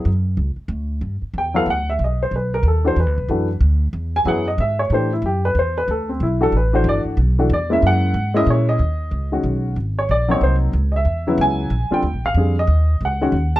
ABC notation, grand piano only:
X:1
M:3/4
L:1/8
Q:"Swing" 1/4=185
K:F#mix
V:1 name="Grand piano"
z6 | [K:G] z2 g =f ^f e | ^d c B _B A c | B3 z3 |
z ^g f _e =e ^c | c E G B c B | A C E A B c | d z3 d e |
f3 _e ^c e- | [K:B] _e4 z2 | z c =d c ^B z | z [de]3 g2- |
g =g2 ^e2 d- | d2 f3 =a |]
V:2 name="Grand piano"
z6 | [K:G] z3 [F,B,EA] z2 | z4 z [E,A,DF] | z2 [E,A,DF] z3 |
z2 [F,B,E^G] z3 | [E,A,DG] z4 z | z3 [E,A,DF] z [E,A,DF]- | [E,A,DF]2 z [E,A,DF] z [_A,_B,^CE]- |
[_A,_B,^CE]2 z [A,^A,CE]3 | [K:B] z3 [D,G,CF]3 | z3 [F,A,^B,D]3 | z3 [C,F,B,E]3 |
z [=D,=G,=C^E] z2 [D,G,C^G] z | z3 [D,G,CF] z2 |]